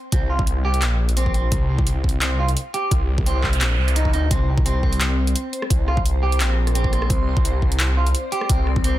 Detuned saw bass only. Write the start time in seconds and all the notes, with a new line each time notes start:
0.12 C2
0.64 C2
0.82 A#1
1.52 C2
2.04 C2
2.22 C2
2.91 C2
3.44 C2
3.61 A#1
3.78 C2
4.13 D2
4.31 C2
4.83 C2
5.01 C2
5.70 C2
6.23 C2
6.40 A#1
7.10 C2
7.62 C2
7.80 C2
8.50 C2